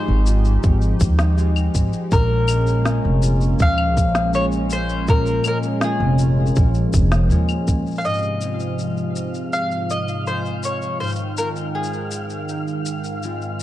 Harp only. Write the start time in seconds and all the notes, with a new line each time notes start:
Already playing: G#2 F3 G#3 C4 F4
0.27 F4
0.64 F3
1.37 G#3 C4 F4
2.11 A#2
2.49 G#3
2.85 G#3 C#4 F4
3.23 F4
3.59 F3
4.34 G#3 C#4 F4
5.09 A#2
5.45 G#3
5.83 G#3 C#4 F4
6.19 F4
6.57 F3
7.31 G#3 C#4 F4
8.05 G#2
8.43 G#3 C4 F4
10.27 G#3 F4
11.01 G#2
11.39 G#3 C4 F4
13.24 G#3 C4 F4